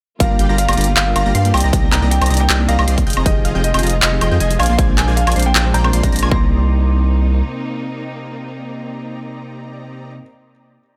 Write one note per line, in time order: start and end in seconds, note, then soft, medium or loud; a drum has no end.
0.19 0.38 G1 loud
0.19 1.52 D3 medium
0.19 0.46 G3 medium
0.19 1.52 G3 medium
0.19 0.37 G3 loud
0.19 3.04 A#3 medium
0.19 0.47 D4 medium
0.19 1.52 F4 medium
0.19 0.47 F4 medium
0.19 0.37 G4 medium
0.19 0.48 A#4 loud
0.19 0.37 D5 medium
0.19 0.37 F5 medium
0.19 0.53 F5 loud
0.19 0.37 A#5 loud
0.19 0.37 A#6 loud
0.19 kick loud
0.19 closed hi-hat medium
0.30 0.34 A#3 loud
0.39 0.47 G1 medium
0.39 0.47 G3 medium
0.39 0.47 G4 medium
0.39 0.47 D5 medium
0.39 0.47 F5 medium
0.39 0.47 G5 medium
0.39 0.47 G6 medium
0.39 closed hi-hat medium
0.49 0.67 G1 loud
0.49 0.55 G3 medium
0.49 0.66 G3 medium
0.49 0.55 D4 medium
0.49 0.56 F4 medium
0.49 0.66 G4 medium
0.49 0.56 A#4 medium
0.49 0.66 D5 medium
0.49 0.66 F5 medium
0.49 0.55 F5 medium
0.49 0.66 A#5 loud
0.49 0.66 A#6 loud
0.58 0.91 F5 medium
0.58 closed hi-hat medium
0.68 0.76 G1 loud
0.68 0.75 G3 medium
0.68 0.72 A#3 medium
0.68 0.75 G4 medium
0.68 0.75 D5 medium
0.68 0.75 F5 medium
0.68 0.75 A#5 loud
0.68 0.75 A#6 loud
0.68 closed hi-hat medium
0.68 high woodblock medium
0.73 0.84 G3 medium
0.73 closed hi-hat medium
0.77 0.95 G1 loud
0.77 0.90 G3 loud
0.77 0.84 D4 medium
0.77 0.84 F4 medium
0.77 0.90 G4 medium
0.77 0.85 A#4 medium
0.77 0.90 D5 medium
0.77 0.90 F5 medium
0.77 0.90 A#5 loud
0.77 0.90 A#6 loud
0.77 closed hi-hat medium
0.81 closed hi-hat medium
0.84 0.92 A#3 loud
0.84 closed hi-hat medium
0.96 1.14 G1 medium
0.96 1.05 G3 medium
0.96 1.05 G4 medium
0.96 1.05 D5 medium
0.96 1.05 F5 medium
0.96 1.13 F5 medium
0.96 1.05 G5 loud
0.96 1.05 G6 loud
0.96 clap loud
0.96 closed hi-hat medium
1.06 1.23 G3 medium
1.06 1.23 D4 medium
1.06 1.24 F4 medium
1.06 1.24 A#4 loud
1.06 1.13 F5 medium
1.16 1.24 G1 loud
1.16 1.24 G3 medium
1.16 1.24 G4 medium
1.16 1.24 D5 medium
1.16 1.24 F5 medium
1.16 1.32 F5 medium
1.16 1.24 A#5 loud
1.16 1.24 A#6 loud
1.16 closed hi-hat medium
1.16 high woodblock medium
1.25 1.33 G1 loud
1.25 1.31 G3 medium
1.25 1.33 G3 medium
1.25 1.30 A#3 medium
1.25 1.32 D4 medium
1.25 1.32 F4 medium
1.25 1.33 G4 medium
1.25 1.32 A#4 medium
1.25 1.33 D5 medium
1.25 1.33 F5 medium
1.25 1.33 A#5 loud
1.25 1.33 A#6 loud
1.35 1.52 G2 loud
1.35 1.52 G3 medium
1.35 1.52 G4 medium
1.35 1.52 D5 medium
1.35 1.51 F5 medium
1.35 1.52 F5 medium
1.35 1.52 C6 loud
1.35 1.52 C7 medium
1.35 closed hi-hat medium
1.44 1.50 G3 medium
1.44 1.49 A#3 loud
1.44 1.51 D4 medium
1.44 1.51 F4 medium
1.44 1.51 A#4 medium
1.44 closed hi-hat medium
1.54 1.62 C2 medium
1.54 3.05 C3 medium
1.54 4.56 D#3 medium
1.54 1.63 C4 loud
1.54 3.05 D4 medium
1.54 1.63 G4 medium
1.54 1.63 D5 medium
1.54 1.63 D#5 medium
1.54 1.87 G5 loud
1.54 1.63 A#5 loud
1.54 1.63 A#6 loud
1.54 closed hi-hat medium
1.54 open hi-hat medium
1.54 high woodblock medium
1.60 1.71 C2 loud
1.60 1.71 C4 medium
1.60 1.71 G4 medium
1.60 1.70 C5 medium
1.60 1.71 D5 medium
1.60 1.71 D#5 medium
1.60 1.71 A#5 loud
1.60 1.71 A#6 loud
1.60 closed hi-hat medium
1.72 1.90 C2 loud
1.72 1.99 C3 medium
1.72 2.00 A#3 medium
1.72 2.00 D#4 medium
1.72 1.90 G4 medium
1.72 1.90 D5 medium
1.72 2.00 D5 loud
1.72 1.90 A#6 loud
1.72 kick loud
1.72 closed hi-hat medium
1.83 1.87 A#3 medium
1.92 2.00 C2 medium
1.92 2.00 C4 medium
1.92 2.00 G4 medium
1.92 2.00 D5 medium
1.92 2.00 D#5 medium
1.92 2.00 G5 loud
1.92 2.08 A#5 medium
1.92 2.00 G6 medium
1.92 clap medium
1.92 closed hi-hat medium
2.01 2.19 C2 loud
2.01 2.08 C3 medium
2.01 2.08 A#3 medium
2.01 2.06 A#3 loud
2.01 2.19 C4 medium
2.01 2.08 D#4 medium
2.01 2.19 G4 medium
2.01 2.19 D5 medium
2.01 2.09 D5 medium
2.01 2.19 D#5 medium
2.01 2.19 A#5 loud
2.01 2.19 A#6 loud
2.11 2.36 G5 medium
2.11 closed hi-hat medium
2.21 2.29 C2 loud
2.21 2.28 C4 medium
2.21 2.28 G4 medium
2.21 2.27 C5 medium
2.21 2.28 D5 medium
2.21 2.28 D#5 medium
2.21 2.28 A#5 loud
2.21 2.28 A#6 loud
2.21 closed hi-hat medium
2.21 high woodblock medium
2.26 2.37 C3 medium
2.26 2.37 A#3 medium
2.26 closed hi-hat medium
2.30 2.48 C2 loud
2.30 2.43 C4 medium
2.30 2.37 D#4 medium
2.30 2.43 G4 medium
2.30 2.43 D5 medium
2.30 2.37 D5 loud
2.30 2.43 D#5 medium
2.30 2.43 A#5 loud
2.30 2.43 A#6 loud
2.30 closed hi-hat soft
2.34 closed hi-hat medium
2.37 2.44 A#3 medium
2.37 2.64 G5 loud
2.37 closed hi-hat medium
2.49 2.67 C2 loud
2.49 2.58 C4 medium
2.49 2.58 G4 medium
2.49 2.58 D5 medium
2.49 2.58 D#5 medium
2.49 2.58 G5 medium
2.49 2.58 G6 loud
2.49 clap loud
2.49 closed hi-hat medium
2.58 2.76 C3 loud
2.58 2.76 A#3 medium
2.58 2.63 A#3 loud
2.58 2.76 D#4 medium
2.58 2.77 D5 loud
2.68 2.77 C2 loud
2.68 2.77 C4 medium
2.68 2.77 G4 medium
2.68 2.77 D5 medium
2.68 2.77 D#5 medium
2.68 3.19 F5 medium
2.68 2.77 A#5 loud
2.68 2.77 A#6 loud
2.68 closed hi-hat medium
2.78 2.86 C2 loud
2.78 2.84 C3 medium
2.78 2.84 A#3 medium
2.78 2.86 C4 medium
2.78 2.85 D#4 medium
2.78 2.86 G4 medium
2.78 2.84 C5 medium
2.78 2.86 D5 medium
2.78 2.85 D5 medium
2.78 2.86 D#5 medium
2.78 2.86 A#5 loud
2.78 2.86 A#6 loud
2.78 high woodblock medium
2.88 3.05 C2 loud
2.88 3.05 C4 medium
2.88 3.05 G4 medium
2.88 3.05 D5 medium
2.88 3.05 D#5 medium
2.88 3.05 C6 loud
2.88 3.05 C7 loud
2.88 closed hi-hat medium
2.97 3.03 C3 medium
2.97 3.03 A#3 medium
2.97 3.02 A#3 medium
2.97 3.04 D#4 medium
2.97 3.04 D5 medium
2.97 kick medium
2.97 closed hi-hat medium
3.07 3.15 F1 loud
3.07 3.15 F3 loud
3.07 4.58 G3 medium
3.07 6.28 G#3 medium
3.07 4.58 F4 medium
3.07 3.15 F4 medium
3.07 3.15 G#4 medium
3.07 3.15 D#5 medium
3.07 3.15 G5 loud
3.07 3.15 G6 loud
3.07 closed hi-hat medium
3.07 open hi-hat medium
3.13 3.24 F1 loud
3.13 3.24 F3 medium
3.13 3.21 C4 loud
3.13 3.24 F4 medium
3.13 3.24 G#4 medium
3.13 3.24 D#5 medium
3.13 3.24 A#5 loud
3.13 3.24 A#6 loud
3.13 closed hi-hat medium
3.13 high woodblock medium
3.25 3.43 F1 loud
3.25 3.52 F3 medium
3.25 3.43 F3 loud
3.25 3.53 D#4 medium
3.25 3.43 F4 medium
3.25 3.53 G4 medium
3.25 3.43 G#4 medium
3.25 3.53 G#4 loud
3.25 3.58 D#5 loud
3.25 3.43 D#5 medium
3.25 3.43 G5 loud
3.25 3.43 G6 loud
3.25 kick loud
3.25 closed hi-hat medium
3.36 3.42 D#5 medium
3.45 3.53 F1 medium
3.45 3.53 F3 medium
3.45 3.53 F4 medium
3.45 3.53 G#4 medium
3.45 3.53 D#5 medium
3.45 3.53 F5 medium
3.45 3.53 F6 medium
3.45 closed hi-hat medium
3.54 3.72 F1 loud
3.54 3.60 F3 medium
3.54 3.72 F3 medium
3.54 3.59 C4 medium
3.54 3.61 D#4 medium
3.54 3.72 F4 medium
3.54 3.61 G4 medium
3.54 3.72 G#4 medium
3.54 3.61 G#4 medium
3.54 3.72 D#5 medium
3.54 3.72 G5 loud
3.54 3.72 G6 loud
3.64 3.97 D#5 loud
3.64 closed hi-hat medium
3.74 3.81 F1 loud
3.74 3.81 F3 medium
3.74 3.78 C4 loud
3.74 3.81 F4 medium
3.74 3.81 G#4 medium
3.74 3.81 D#5 medium
3.74 3.81 G5 loud
3.74 3.81 G6 loud
3.74 closed hi-hat medium
3.74 high woodblock medium
3.79 3.89 F3 medium
3.79 3.90 D#4 medium
3.79 closed hi-hat medium
3.83 4.00 F1 medium
3.83 3.96 F3 medium
3.83 3.96 F4 medium
3.83 3.90 G4 medium
3.83 3.96 G#4 medium
3.83 3.90 G#4 loud
3.83 3.96 D#5 medium
3.83 3.96 A#5 loud
3.83 3.96 A#6 loud
3.83 closed hi-hat soft
3.87 closed hi-hat medium
3.90 3.99 D#5 medium
3.90 closed hi-hat medium
4.02 4.20 F1 medium
4.02 4.10 F3 medium
4.02 4.10 F4 medium
4.02 4.10 G#4 medium
4.02 4.10 D#5 medium
4.02 4.19 D#5 medium
4.02 4.10 F5 medium
4.02 4.10 F6 loud
4.02 clap loud
4.02 closed hi-hat medium
4.11 4.29 F3 loud
4.11 4.16 C4 medium
4.11 4.29 D#4 medium
4.11 4.29 G4 medium
4.11 4.30 G#4 loud
4.21 4.30 F1 loud
4.21 4.30 F3 medium
4.21 4.30 F4 medium
4.21 4.30 G#4 medium
4.21 4.38 D#5 medium
4.21 4.30 D#5 medium
4.21 4.30 G5 loud
4.21 4.30 G6 loud
4.21 closed hi-hat medium
4.21 high woodblock medium
4.31 4.39 F2 loud
4.31 4.37 F3 medium
4.31 4.38 F3 medium
4.31 4.35 C4 loud
4.31 4.37 D#4 medium
4.31 4.38 F4 medium
4.31 4.38 G4 medium
4.31 4.38 G#4 medium
4.31 4.38 D#5 medium
4.31 4.38 G5 loud
4.31 4.38 G6 loud
4.40 4.58 F1 medium
4.40 4.57 F3 medium
4.40 4.57 F4 medium
4.40 4.57 G#4 medium
4.40 4.57 D#5 medium
4.40 4.57 G#5 loud
4.40 4.57 G#6 loud
4.40 closed hi-hat medium
4.50 4.56 F3 medium
4.50 4.56 D#4 medium
4.50 4.57 G4 medium
4.50 4.57 G#4 medium
4.50 4.56 D#5 medium
4.50 closed hi-hat medium
4.59 4.68 A#1 loud
4.59 6.30 C3 medium
4.59 4.68 A#3 loud
4.59 6.30 A#3 medium
4.59 6.30 D4 medium
4.59 4.68 F4 medium
4.59 4.68 C5 medium
4.59 4.68 D5 medium
4.59 4.92 F5 loud
4.59 4.68 G#5 loud
4.59 4.68 G#6 loud
4.59 closed hi-hat medium
4.59 open hi-hat medium
4.59 high woodblock medium
4.66 4.77 A#1 loud
4.66 4.76 A#3 medium
4.66 4.74 A#3 medium
4.66 4.76 F4 medium
4.66 4.76 C5 medium
4.66 4.76 D5 medium
4.66 4.76 C6 loud
4.66 4.77 C7 loud
4.66 closed hi-hat medium
4.78 4.96 A#1 loud
4.78 5.05 A#2 medium
4.78 5.05 G#3 medium
4.78 4.96 A#3 medium
4.78 5.06 D4 medium
4.78 4.96 F4 medium
4.78 4.96 C5 medium
4.78 5.06 C5 loud
4.78 4.96 D5 medium
4.78 4.96 G#5 loud
4.78 4.96 G#6 loud
4.78 kick loud
4.78 closed hi-hat medium
4.89 4.93 A#3 loud
4.98 5.06 A#1 medium
4.98 5.05 A#3 medium
4.98 5.05 F4 medium
4.98 5.05 C5 medium
4.98 5.05 D5 medium
4.98 5.06 G5 medium
4.98 5.14 G#5 medium
4.98 5.05 G6 medium
4.98 clap medium
4.98 closed hi-hat medium
5.07 5.25 A#1 loud
5.07 5.13 A#2 medium
5.07 5.14 G#3 medium
5.07 5.25 A#3 medium
5.07 5.14 D4 medium
5.07 5.25 F4 medium
5.07 5.25 C5 medium
5.07 5.14 C5 medium
5.07 5.25 D5 medium
5.07 5.25 G#5 loud
5.07 5.25 G#6 medium
5.17 5.41 F5 loud
5.17 closed hi-hat medium
5.27 5.34 A#1 loud
5.27 5.34 A#3 loud
5.27 5.31 A#3 medium
5.27 5.34 F4 medium
5.27 5.34 C5 medium
5.27 5.34 D5 medium
5.27 5.34 G#5 loud
5.27 5.34 G#6 loud
5.27 closed hi-hat soft
5.27 high woodblock medium
5.32 5.42 A#2 medium
5.32 closed hi-hat medium
5.36 5.53 A#1 loud
5.36 5.43 G#3 medium
5.36 5.49 A#3 medium
5.36 5.43 D4 medium
5.36 5.49 F4 medium
5.36 5.49 C5 medium
5.36 5.43 C5 loud
5.36 5.49 D5 medium
5.36 5.49 C6 loud
5.36 5.49 C7 loud
5.36 closed hi-hat soft
5.39 closed hi-hat medium
5.43 5.50 A#3 loud
5.43 5.70 G5 loud
5.43 closed hi-hat medium
5.55 5.72 A#1 loud
5.55 5.63 A#3 medium
5.55 5.63 F4 medium
5.55 5.63 C5 medium
5.55 5.63 D5 medium
5.55 5.63 G5 medium
5.55 5.63 G6 loud
5.55 clap loud
5.55 closed hi-hat medium
5.64 5.82 A#2 loud
5.64 5.82 G#3 medium
5.64 5.82 D4 medium
5.64 5.71 C5 medium
5.64 5.83 C5 loud
5.74 5.92 A#1 loud
5.74 5.91 A#3 loud
5.74 5.91 F4 medium
5.74 5.91 C5 medium
5.74 5.91 D5 medium
5.74 5.91 G5 loud
5.74 6.24 A#5 loud
5.74 5.91 G6 loud
5.74 closed hi-hat medium
5.84 6.01 A#2 medium
5.84 6.01 G#3 medium
5.84 5.87 C4 medium
5.84 6.01 D4 medium
5.84 6.02 C5 loud
5.84 high woodblock medium
5.93 6.01 A#1 loud
5.93 6.02 A#3 medium
5.93 6.02 F4 medium
5.93 6.02 C5 medium
5.93 6.02 D5 medium
5.93 6.02 C6 loud
5.93 6.02 C7 medium
5.93 closed hi-hat medium
6.02 6.11 A#1 loud
6.02 6.29 A#2 loud
6.02 6.29 G#3 medium
6.02 6.10 A#3 loud
6.02 6.07 C4 loud
6.02 6.30 D4 medium
6.02 6.10 F4 medium
6.02 6.10 C5 medium
6.02 6.30 C5 loud
6.02 6.10 A#5 loud
6.02 6.10 A#6 loud
6.02 kick medium
6.02 closed hi-hat medium
6.12 6.21 A#1 medium
6.12 6.20 A#3 loud
6.12 6.20 F4 medium
6.12 6.20 C5 medium
6.12 6.20 D5 medium
6.12 6.20 A#5 loud
6.12 6.20 A#6 loud
6.12 closed hi-hat medium
6.12 open hi-hat medium
6.19 6.30 A#1 loud
6.19 6.30 A#3 medium
6.19 6.30 F4 medium
6.19 6.27 F4 medium
6.19 6.30 C5 medium
6.19 6.30 D5 medium
6.19 6.30 G#5 loud
6.19 6.30 G#6 loud
6.19 closed hi-hat medium
6.19 high woodblock medium
6.29 7.42 C2 loud
6.29 10.19 C3 medium
6.29 10.21 A#3 medium
6.29 10.13 A#3 medium
6.29 6.49 A#3 loud
6.29 10.13 C4 medium
6.29 10.13 D#4 medium
6.29 10.23 D#4 medium
6.29 10.13 G4 medium
6.29 10.13 D#5 medium
6.29 10.13 A#5 medium
6.29 10.22 C6 medium
6.29 10.22 A#6 loud
6.29 kick loud
6.35 10.25 D6 medium